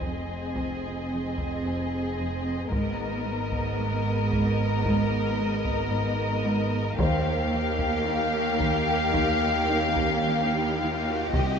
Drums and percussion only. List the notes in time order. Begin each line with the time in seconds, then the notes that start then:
0.01 taiko
0.56 taiko
1.38 taiko
2.72 taiko
3.52 taiko
4.32 taiko
4.85 taiko
5.65 taiko
6.99 taiko
7.79 taiko
8.60 taiko
9.14 taiko
9.96 taiko
11.34 taiko